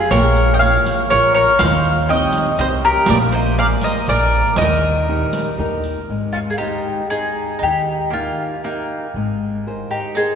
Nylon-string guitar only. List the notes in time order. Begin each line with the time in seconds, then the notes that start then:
0.13 A#3
0.63 F4 A#4 C#5
1.11 F4 A#4 C#5
1.62 D#3
2.10 C4 D#4 G4
2.59 C4 D#4 G4
3.09 A#3
3.58 G#4 A#4 D5
4.08 G#4 A#4 D5
4.59 D#3
5.09 D#4 G4 A#4
5.59 D#4 G4 A#4
6.10 G#3
6.60 G#3 D#4 C5
7.11 D#4 G#4 C5
7.64 D#3
8.13 D#4 G4 A#4
8.65 D#4 G4 A#4
9.16 G#3
9.67 G#4 A#4 C5
10.17 G#4 A#4 C5